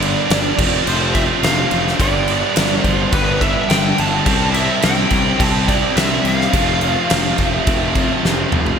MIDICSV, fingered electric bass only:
0, 0, Header, 1, 2, 480
1, 0, Start_track
1, 0, Tempo, 567108
1, 1694, Time_signature, 4, 2, 24, 8
1, 7441, End_track
2, 0, Start_track
2, 0, Title_t, "Fingered electric bass"
2, 0, Program_c, 0, 33
2, 0, Note_on_c, 0, 31, 89
2, 130, Note_off_c, 0, 31, 0
2, 256, Note_on_c, 0, 31, 89
2, 432, Note_off_c, 0, 31, 0
2, 492, Note_on_c, 0, 29, 87
2, 669, Note_off_c, 0, 29, 0
2, 740, Note_on_c, 0, 29, 91
2, 1090, Note_off_c, 0, 29, 0
2, 1209, Note_on_c, 0, 29, 98
2, 1387, Note_off_c, 0, 29, 0
2, 1453, Note_on_c, 0, 29, 89
2, 1629, Note_off_c, 0, 29, 0
2, 1690, Note_on_c, 0, 31, 92
2, 2042, Note_off_c, 0, 31, 0
2, 2177, Note_on_c, 0, 31, 88
2, 2352, Note_off_c, 0, 31, 0
2, 2409, Note_on_c, 0, 31, 88
2, 2586, Note_off_c, 0, 31, 0
2, 2649, Note_on_c, 0, 31, 93
2, 3002, Note_off_c, 0, 31, 0
2, 3137, Note_on_c, 0, 31, 97
2, 3311, Note_off_c, 0, 31, 0
2, 3380, Note_on_c, 0, 31, 90
2, 3553, Note_off_c, 0, 31, 0
2, 3613, Note_on_c, 0, 36, 102
2, 3963, Note_off_c, 0, 36, 0
2, 4099, Note_on_c, 0, 36, 93
2, 4272, Note_off_c, 0, 36, 0
2, 4327, Note_on_c, 0, 36, 90
2, 4505, Note_off_c, 0, 36, 0
2, 4571, Note_on_c, 0, 36, 94
2, 4923, Note_off_c, 0, 36, 0
2, 5050, Note_on_c, 0, 36, 94
2, 5227, Note_off_c, 0, 36, 0
2, 5287, Note_on_c, 0, 36, 91
2, 5464, Note_off_c, 0, 36, 0
2, 5531, Note_on_c, 0, 29, 101
2, 5883, Note_off_c, 0, 29, 0
2, 6024, Note_on_c, 0, 29, 92
2, 6196, Note_off_c, 0, 29, 0
2, 6248, Note_on_c, 0, 29, 90
2, 6426, Note_off_c, 0, 29, 0
2, 6493, Note_on_c, 0, 29, 92
2, 6846, Note_off_c, 0, 29, 0
2, 6968, Note_on_c, 0, 29, 93
2, 7146, Note_off_c, 0, 29, 0
2, 7211, Note_on_c, 0, 29, 88
2, 7389, Note_off_c, 0, 29, 0
2, 7441, End_track
0, 0, End_of_file